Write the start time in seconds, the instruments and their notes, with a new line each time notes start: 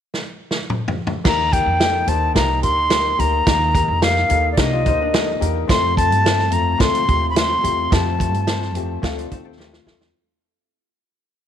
0.14 snare
0.51 snare
0.70 mid tom
0.88 floor tom
1.07 floor tom
1.24 upright bass D#2, upright piano A#3 D#4 G4 A#4, flute A#5, kick, snare, crash
1.53 upright piano A#3 D#4 G4 A#4, flute G5, kick, closed hi-hat
1.66 upright bass F2
1.80 upright piano A#3 D#4 G4 A4, snare, closed hi-hat
2.06 upright bass D#2, upright piano A#3 D#4 G4 C5, flute A5, closed hi-hat
2.34 upright bass C2, upright piano A#3 D#4 G4 A#4, flute A#5, kick, snare, closed hi-hat
2.62 upright bass D2, upright piano A#3 D#4 G4 A#4, flute C6, kick, closed hi-hat
2.89 upright piano A#3 D#4 G4 A#4, snare, closed hi-hat
3.18 upright bass D2, upright piano A#3 D#4 G4 A#4, flute A#5, closed hi-hat
3.46 upright bass D#2, upright piano A#3 D#4 G4 A#4, kick, snare, closed hi-hat
3.74 upright piano A#3 D#4 G4 A#4, kick, closed hi-hat
3.88 upright bass F2
4.01 upright piano A#3 D#4 G4 A#4, flute F5, snare, closed hi-hat
4.16 snare
4.29 upright bass D#2, upright piano A#3 D#4 G4 A4, closed hi-hat
4.52 flute D5
4.57 upright bass C2, upright piano A#3 D#4 G4 A#4, hollow-body jazz guitar D4 A#4, flute D#5, kick, snare, closed hi-hat
4.73 hollow-body jazz guitar F4 D5
4.85 upright bass D2, upright piano A#3 D#4 G4 A#4, hollow-body jazz guitar D#4 C5, kick, closed hi-hat
5.01 hollow-body jazz guitar D4 A#4
5.13 upright piano A#3 D#4 G4 A4, snare, closed hi-hat
5.40 upright bass E2, upright piano A#3 D#4 G4 A#4, closed hi-hat
5.68 upright bass F2, upright piano A3 C4 F4 A4, flute C6, kick, snare, closed hi-hat
5.94 upright piano A3 C4 F4 A4, flute A5, kick, closed hi-hat
6.11 upright bass G2, closed hi-hat
6.23 upright piano A3 C4 F4 A4, snare, closed hi-hat
6.39 snare
6.50 upright bass F2, upright piano A3 C4 F4 A4, flute A#5, closed hi-hat
6.78 upright bass D2, upright piano A3 C4 F4 A4, flute C6, kick, snare, closed hi-hat
6.95 closed hi-hat
7.06 upright bass D#2, upright piano A3 C4 F4 G4, kick, closed hi-hat
7.30 flute B5
7.35 upright piano A3 C4 F4 A4, flute C6, snare, closed hi-hat
7.62 upright bass E2, upright piano A3 C4 F4 G4, closed hi-hat
7.91 upright bass F2, upright piano A3 C4 F4 G4, flute A5, kick, snare, closed hi-hat
8.18 upright piano A3 C4 F4 A4, kick, closed hi-hat
8.32 upright bass G2, closed hi-hat
8.47 upright piano A3 C4 F4 C5, snare, closed hi-hat
8.62 snare
8.74 upright bass F2, upright piano A3 C4 F4 G4, closed hi-hat
9.02 upright bass D2, upright piano A3 C4 F4 A4, hollow-body jazz guitar A4 F5, kick, snare, closed hi-hat
9.18 hollow-body jazz guitar F4 D5, closed hi-hat
9.30 upright bass D#2, upright piano A3 C4 F4 A4, hollow-body jazz guitar D#4 C5, kick, closed hi-hat
9.45 hollow-body jazz guitar C4 A4
9.57 upright piano A3 C4 F4 A4, hollow-body jazz guitar G4, snare
9.73 hollow-body jazz guitar A3 F4, snare
9.85 upright bass E2, upright piano A3 C4 F4 A4, snare
10.01 snare